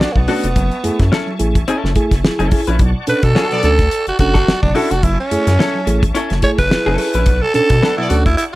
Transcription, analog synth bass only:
0.01 B1
0.16 B1
0.44 F1
0.56 F#1
0.84 F#2
1.00 F#2
1.40 A1
1.84 F#1
2.11 F#1
2.24 F#1
2.39 F#1
2.68 A#1
2.80 B1
3.08 B2
3.23 B2
3.64 D2
4.07 F#1
4.19 F#1
4.48 F#1
4.63 F#1
4.91 F1
5.03 F#1
5.31 F#2
5.47 F#2
5.87 A1
6.31 F#1
6.59 F#1
6.71 F#1
6.87 F#1
7.15 A#1
7.27 B1
7.55 B2
7.70 B2
8.11 D2

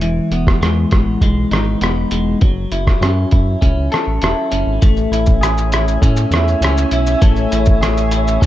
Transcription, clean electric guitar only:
Already playing: G#3 E4
0.02 E3
0.32 B3
0.62 G#3
0.92 B3
1.22 G#3
1.52 D#4
1.82 B3
2.12 G#3
2.42 F#3
2.72 E4
3.02 C#4
3.32 E4
3.61 C#4
3.92 A4
4.23 E4
4.51 C#4
4.82 A3
5.12 E4
5.41 G#4
5.72 E4
6.02 C#4
6.33 E4
6.63 C#4
6.93 E4
7.21 A3
7.51 E4
7.81 G#4
8.12 E4
8.41 C#4

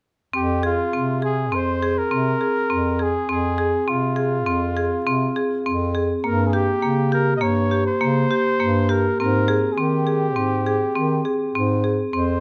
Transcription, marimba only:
0.33 C4
0.63 G#4
0.93 C4
1.22 G#4
1.52 C4
1.83 G#4
2.11 C4
2.41 G#4
2.70 C4
2.99 G#4
3.29 C4
3.58 G#4
3.88 C4
4.16 G#4
4.46 C4
4.77 G#4
5.07 C4
5.36 G#4
5.66 C4
5.95 G#4
6.24 A#3
6.53 G4
6.82 A#3
7.12 G4
7.41 A#3
7.71 G4
8.01 A#3
8.31 G4
8.60 A#3
8.89 G4
9.20 C4
9.48 G#4
9.78 C4
10.07 G#4
10.36 C4
10.66 G#4
10.96 C4
11.25 G#4
11.55 C4
11.84 G#4
12.13 C4

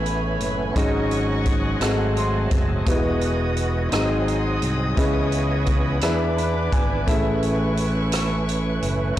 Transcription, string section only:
Already playing: C#5 G#5 B5
0.75 D#5 F#5 C#6
1.82 A5 C6
2.86 F#5 D#6
3.91 F#5 C6 D#6
4.96 E4 B5 C#6
6.01 G#5 D6
7.06 C#6

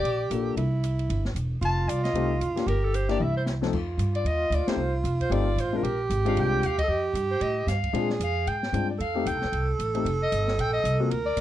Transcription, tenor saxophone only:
Already playing: G4
0.57 E4
1.62 F4
2.67 G4
3.20 E4
3.72 F4
5.84 G4
6.83 A4
6.89 G4
7.94 G#4
8.99 A4
11.11 A#4

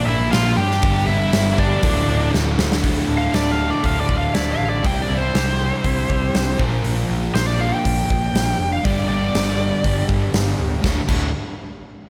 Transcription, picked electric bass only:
0.08 A#1
0.33 A#1
0.57 G2
0.82 G1
1.08 G1
1.33 G1
1.83 D1
2.07 D1
2.34 D1
2.59 D1
2.84 D1
3.09 D1
3.34 D1
3.83 D1
4.09 D1
4.36 D1
4.60 A1
4.85 C2
5.10 C2
5.34 C2
5.84 C2
6.10 C2
6.35 C2
6.60 A#1
6.84 A#1
7.09 A#1
7.35 A#1
7.85 A#1
8.11 A#1
8.34 A#1
8.59 F1
8.85 G1
9.09 G1
9.35 G1
9.84 G1
10.08 G1
10.34 G1
10.60 D1
10.84 D1
11.08 D1

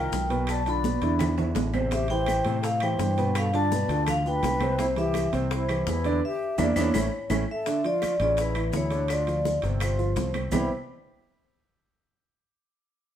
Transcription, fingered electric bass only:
0.12 B1
1.02 E2
1.55 A1
2.45 A2
2.99 G2
3.88 D2
4.43 C2
5.33 C2
5.87 E2
6.58 E2
6.76 E2
6.94 A1
7.30 A1
8.20 A1
8.73 D2
9.63 G1
10.16 C2
10.52 C2

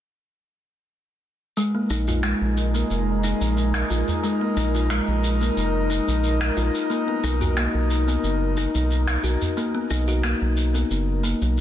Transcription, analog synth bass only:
1.90 A#1
2.41 A#1
2.90 F1
3.41 A#1
3.90 A#1
4.56 A#1
5.08 A#1
5.57 F1
6.08 A#1
6.57 A#1
7.24 B1
7.74 B1
8.23 F#1
8.75 B1
9.23 B1
9.91 B1
10.41 B1
10.91 F#1
11.41 B1

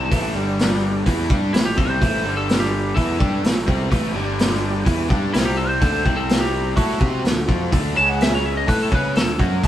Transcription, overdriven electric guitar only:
Already playing: C3 G3 C4
0.10 A2 E3 A3
0.35 G2 D3 G3
1.06 E3 B3 E4
1.29 G3 D4 G4
1.54 A2 E3
1.76 C3 G3 C4
2.00 A2 E3 A3
2.24 G2 D3 G3
2.95 E3 B3 E4
3.19 G3 D4 G4
3.43 A2 E3
3.67 C3 G3 C4
3.90 A2 E3 A3
4.14 G2 D3 G3
4.85 E3 B3 E4
5.08 G3 D4 G4
5.33 C3 G3 C4
5.81 D3 A3 D4
6.05 C3 G3 C4
6.76 A3 E4 A4
7.00 C4 G4 C5
7.24 D3 A3
7.48 F3 C4 F4
7.72 D3 A3 D4
7.95 C#3 G#3 C#4
8.66 A3 E4 A4
8.91 C#4 G#4 C#5
9.15 D#3 A#3
9.39 F#3 C#4 F#4
9.63 A2 E3 A3

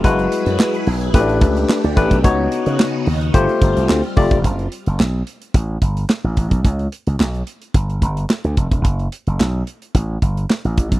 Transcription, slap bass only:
0.04 F#1
0.46 F#2
0.87 B1
1.14 A1
1.42 C#2
1.84 D2
1.97 A1
2.11 B1
2.24 C#2
2.66 C#3
3.07 D#2
3.34 G1
3.62 G1
3.77 C2
3.89 D2
4.17 F1
4.31 E1
4.44 F#1
4.87 F#1
5.00 B1
5.54 A1
5.82 G1
6.24 A1
6.37 A1
6.51 B1
6.65 C#2
7.07 C#2
7.20 B1
7.74 G1
8.02 G1
8.44 D2
8.57 F1
8.71 E1
8.85 F#1
9.27 F#1
9.40 B1
9.95 A1
10.22 G1
10.65 A1
10.78 A1
10.92 B1

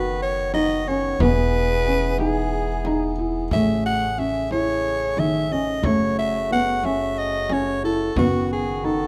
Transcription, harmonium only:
Already playing: D#3 B3 F#4
1.19 E3 B3 G#4
3.50 C#3 A3
5.84 F#4
8.16 D#3 B3

